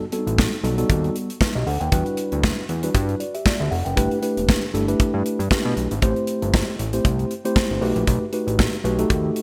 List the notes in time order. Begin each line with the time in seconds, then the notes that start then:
0.12 G3 B3 C4 F#4 A4, closed hi-hat
0.19 D#4
0.27 A1, closed hi-hat
0.38 kick, snare
0.53 closed hi-hat
0.63 B1 G3 B3 D#4 F#4 A4, closed hi-hat
0.78 G3 B3 D#4 F#4 A4, closed hi-hat
0.89 D#2, kick, closed hi-hat
1.04 closed hi-hat
1.16 closed hi-hat
1.30 closed hi-hat
1.41 D#4 B4, kick, snare
1.55 B1 G4 D#5
1.67 D2 A4 F#5, open hi-hat
1.80 D#2 B4 G5, closed hi-hat
1.92 E2 G3 D4 E4 F#4 B4, kick, closed hi-hat
2.06 closed hi-hat
2.17 closed hi-hat
2.32 D2, closed hi-hat
2.44 kick, snare
2.69 E2, closed hi-hat
2.83 G3 D4 E4 F#4 B4, closed hi-hat
2.94 G2, kick, closed hi-hat
3.09 closed hi-hat
3.20 F#4 D5, closed hi-hat
3.35 G4 E5, closed hi-hat
3.46 F#4 D5, kick, snare
3.60 D2 G4 E5
3.71 F1 A4 F#5, open hi-hat
3.85 F#1 B4 G5, closed hi-hat
3.96 G1 A3 D4 E4 G4 B4, kick, closed hi-hat
4.11 closed hi-hat
4.22 A3 D4 E4 G4 B4, closed hi-hat
4.37 E1, closed hi-hat
4.49 kick, snare
4.74 G1 A3 D4 E4 G4 A4, closed hi-hat
4.88 A3 D4 E4 G4 B4, closed hi-hat
5.00 kick, closed hi-hat
5.14 G2
5.26 closed hi-hat
5.39 G2, closed hi-hat
5.50 A3 D4 E4 G4 B4, kick, snare
5.65 B2
5.77 B1, closed hi-hat
5.91 G#1, closed hi-hat
6.02 A1 A3 C4 E4 G4 C5, kick, closed hi-hat
6.16 closed hi-hat
6.27 closed hi-hat
6.42 G1, closed hi-hat
6.54 kick, snare
6.79 A1, closed hi-hat
6.93 A3 C4 E4 G4 C5, closed hi-hat
7.05 C2, kick, closed hi-hat
7.19 closed hi-hat
7.31 closed hi-hat
7.45 A3 C4 E4 G4 C5, closed hi-hat
7.56 kick, snare
7.71 G1
7.81 B1 A3 D#4 F#4 G4 B4, open hi-hat
7.96 A#1, closed hi-hat
8.07 B1, kick, closed hi-hat
8.33 A3 D#4 F#4 G4 B4, closed hi-hat
8.47 A1, closed hi-hat
8.59 kick, snare
8.73 closed hi-hat
8.84 B1 A3 D#4 F#4 G4 B4, closed hi-hat
8.98 A3 D#4 F#4 G4 A4, closed hi-hat
9.10 D#2, kick, closed hi-hat
9.36 closed hi-hat